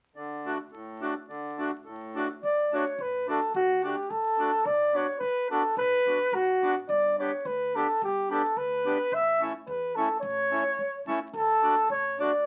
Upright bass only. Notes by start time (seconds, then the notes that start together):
2.43 D2
2.98 A1
3.54 D2
4.10 F#2
4.65 B1
5.21 F#2
5.77 B1
6.06 C#2
6.32 B1
6.62 A1
6.89 G1
7.45 D2
8.02 G1
8.56 D2
9.12 A1
9.67 E2
10.22 A1
10.78 F#2
11.07 E2
11.33 D2
11.90 A1